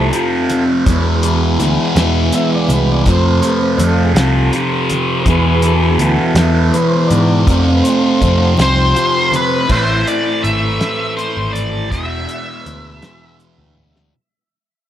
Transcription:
Already playing: distorted electric guitar F2 C3 F3, transistor combo organ A3 C4 A4
0.13 distorted electric guitar F2 C3 F3, closed hi-hat
0.50 closed hi-hat, low conga
0.86 distorted electric guitar E2 B2 E3, picked electric bass E2, transistor combo organ E3 G#3 B3, kick, closed hi-hat, high conga
1.23 distorted electric guitar B2 E3, closed hi-hat
1.60 picked electric bass D2, distorted electric guitar E2 B2 E3, closed hi-hat, low conga
1.96 picked electric bass E2, distorted electric guitar B2 E3, snare, closed hi-hat, high conga
2.00 distorted electric guitar E2
2.32 distorted electric guitar E2 B2 E3, transistor combo organ E5, closed hi-hat
2.51 transistor combo organ D5, low conga
2.68 picked electric bass C2, closed hi-hat, low conga
2.74 transistor combo organ B4
2.92 transistor combo organ D5
3.05 distorted electric guitar F2 C3 F3, picked electric bass F2, transistor combo organ A3 C4, kick, closed hi-hat, high conga
3.12 transistor combo organ C5
3.42 distorted electric guitar C3 F3, closed hi-hat
3.49 transistor combo organ B4
3.78 picked electric bass F2, distorted electric guitar F2 C3 F3, closed hi-hat, low conga
3.87 transistor combo organ A4
4.05 transistor combo organ G#4
4.14 picked electric bass C2, distorted electric guitar F3, snare, closed hi-hat, high conga
4.19 distorted electric guitar F2 C3, transistor combo organ A4
4.53 distorted electric guitar F2 C3 F3, closed hi-hat
4.72 low conga
4.90 closed hi-hat, low conga
5.20 transistor combo organ A#4
5.25 distorted electric guitar E2 B2 E3, picked electric bass E2, transistor combo organ E3 B3 G#4 B4, kick, closed hi-hat, high conga
5.62 distorted electric guitar B2 E3, transistor combo organ A4, closed hi-hat
5.84 transistor combo organ G#4
5.99 picked electric bass D2, distorted electric guitar E2 B2 E3, transistor combo organ A4, closed hi-hat
6.35 picked electric bass E2, distorted electric guitar E3, snare, closed hi-hat, high conga
6.39 distorted electric guitar E2 B2
6.73 distorted electric guitar E2 B2 E3, transistor combo organ B4, closed hi-hat
6.89 transistor combo organ C5
6.94 low conga
7.07 picked electric bass G#2, transistor combo organ D5, closed hi-hat
7.12 low conga
7.47 picked electric bass F2, distorted electric guitar F2 C3, transistor combo organ A3 C4, kick, closed hi-hat, high conga, low conga
7.51 distorted electric guitar F3
7.75 transistor combo organ B4
7.83 distorted electric guitar F3, transistor combo organ C5, closed hi-hat
7.89 distorted electric guitar C3
8.03 low conga
8.21 picked electric bass F2, distorted electric guitar F2 C3 F3, kick, closed hi-hat, low conga
8.57 picked electric bass C2, distorted electric guitar F2 C3 F3, snare, closed hi-hat, high conga
8.62 lead electric guitar C5
8.96 distorted electric guitar F2 C3 F3, closed hi-hat, low conga
9.32 closed hi-hat, low conga
9.36 lead electric guitar B4
9.50 low conga
9.68 picked electric bass A1, distorted electric guitar A2 E3, transistor combo organ A3 C4 E4, lead electric guitar C5, kick, crash
9.72 distorted electric guitar A3, lead electric guitar B4
9.83 lead electric guitar C5
10.07 lead electric guitar D5, closed hi-hat
10.44 picked electric bass G#1, lead electric guitar E5, closed hi-hat
10.81 snare, closed hi-hat
11.17 lead electric guitar C5, closed hi-hat
11.37 picked electric bass G#1
11.53 lead electric guitar D5, closed hi-hat
11.91 picked electric bass E1, distorted electric guitar E2 B2 E3, transistor combo organ G#3 B3, lead electric guitar E5, kick, closed hi-hat
12.29 closed hi-hat
12.66 picked electric bass D2, closed hi-hat
13.02 snare, closed hi-hat
13.40 closed hi-hat
13.58 picked electric bass D2
13.77 high tom
13.96 snare

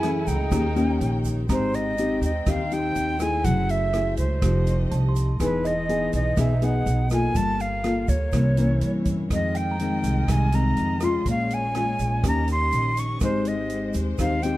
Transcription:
Already playing: nylon-string guitar F#2, string section A3 E4 F#5, violin section E4, tine electric piano G#4, flute G#5
0.03 nylon-string guitar E3 A3 C#4, cross-stick, closed hi-hat
0.26 upright bass C#2, violin section D#4, flute G5, kick, closed hi-hat, shaker
0.51 upright bass D#2, nylon-string guitar D#3 A#3 C#4 G4, string section D#4 C#5 G5, kick, cross-stick, closed hi-hat, shaker
0.76 nylon-string guitar A#3 C#4 G4, closed hi-hat, shaker
1.00 upright bass A#1, closed hi-hat
1.25 kick, closed hi-hat, shaker
1.48 upright bass G#1, nylon-string guitar G#3 C4 D#4 G4, string section C4 C5 G5, flute C5, tine electric piano A#5, kick, cross-stick, closed hi-hat, shaker
1.73 flute D#5, closed hi-hat, shaker
1.98 nylon-string guitar C4 D#4 G4, closed hi-hat, shaker
2.21 upright bass D#2, flute D#5, closed hi-hat, shaker
2.46 upright bass D#2, nylon-string guitar D#3 C4 D#4 G4, flute F5, kick, cross-stick, closed hi-hat, shaker
2.71 nylon-string guitar C4 D#4 G4, flute G5, closed hi-hat, shaker
2.95 upright bass D#2, closed hi-hat, shaker
3.19 nylon-string guitar A3 E4 G#4, flute G#5, cross-stick, closed hi-hat, shaker
3.43 upright bass F#1, nylon-string guitar F#3, string section A3 E5, flute F#5, kick, closed hi-hat, shaker
3.69 flute E5, closed hi-hat, shaker
3.93 nylon-string guitar A3 E4 G#4, cross-stick, closed hi-hat
4.17 upright bass C#2, flute C5, closed hi-hat, shaker
4.41 upright bass F1, nylon-string guitar F3 A3 D#4 G4, string section G4 D#5, kick, cross-stick, closed hi-hat, shaker
4.66 closed hi-hat, shaker
4.91 upright bass C2, tine electric piano A5, closed hi-hat
5.09 tine electric piano C6
5.16 closed hi-hat, shaker
5.39 upright bass E1, nylon-string guitar E3 B3 D#4 G#4, string section D#4 G#4, flute B4, kick, cross-stick, closed hi-hat, shaker
5.65 tine electric piano D#5, flute D#5, closed hi-hat, shaker
5.89 nylon-string guitar B3 D#4 G#4, closed hi-hat
6.13 upright bass B1, flute D#5, closed hi-hat, shaker
6.37 upright bass B1, nylon-string guitar B2 B3 D#4 G#4, flute E5, kick, cross-stick, closed hi-hat, shaker
6.62 nylon-string guitar B3 D#4 G#4, flute F#5, closed hi-hat, shaker
6.86 upright bass B1, closed hi-hat, shaker
7.10 nylon-string guitar A#3 F4 A4, flute G#5, cross-stick, closed hi-hat, shaker
7.35 upright bass G1, nylon-string guitar G3, string section A#3 F4, flute A5, kick, closed hi-hat, shaker
7.59 flute F5, closed hi-hat, shaker
7.84 nylon-string guitar A#3 F4 A4, cross-stick, closed hi-hat
8.08 upright bass D2, flute C#5, kick, closed hi-hat, shaker
8.32 upright bass C2, nylon-string guitar C3 E3 A#3 C#4, string section A#3 E4 C#5, kick, cross-stick, closed hi-hat, shaker
8.57 nylon-string guitar E3 A#3 C#4, closed hi-hat, shaker
8.81 upright bass G2, closed hi-hat
9.05 kick, closed hi-hat, shaker
9.30 upright bass F2, nylon-string guitar F2 D#3 G#3 C4, string section G#3 F4 D#5, flute D#5, kick, cross-stick, closed hi-hat, shaker
9.55 tine electric piano G5, flute G5, closed hi-hat, shaker
9.71 tine electric piano A#5
9.79 nylon-string guitar D#3 G#3 C4, closed hi-hat
10.04 upright bass C2, closed hi-hat, shaker
10.28 upright bass C2, nylon-string guitar C3 D#3 G#3 C4, flute G#5, kick, cross-stick, closed hi-hat, shaker
10.52 nylon-string guitar D#3 G#3 C4, flute A#5, closed hi-hat, shaker
10.77 upright bass F2, closed hi-hat
11.00 nylon-string guitar G#3 C#4 F4, flute C6, cross-stick, closed hi-hat, shaker
11.26 upright bass A#1, nylon-string guitar A#2, string section A#3 G#4 C#5, kick, closed hi-hat, shaker
11.30 flute F5
11.50 flute G#5, closed hi-hat, shaker
11.75 nylon-string guitar G#3 C#4 F4, tine electric piano G#5, cross-stick, closed hi-hat
11.99 upright bass A#1, closed hi-hat, shaker
12.23 upright bass D#2, nylon-string guitar D#3 A#3 C#4 G4, string section C#4 G4 D#5, kick, cross-stick, closed hi-hat, shaker
12.28 flute A#5
12.48 closed hi-hat, shaker
12.52 flute C6
12.71 upright bass A#1, closed hi-hat, shaker
12.97 flute C#6, closed hi-hat, shaker
13.20 upright bass G#1, string section G#3 C5, nylon-string guitar G#3 C4 D#4 G4, flute C5, kick, cross-stick, closed hi-hat, shaker
13.45 flute D#5, closed hi-hat, shaker
13.70 closed hi-hat
13.94 upright bass D#2, closed hi-hat, shaker
14.18 upright bass D#2, nylon-string guitar D#3 C4 D#4 G4, flute F5, kick, cross-stick, closed hi-hat, shaker
14.43 nylon-string guitar C4 D#4 G4, flute G5, closed hi-hat, shaker

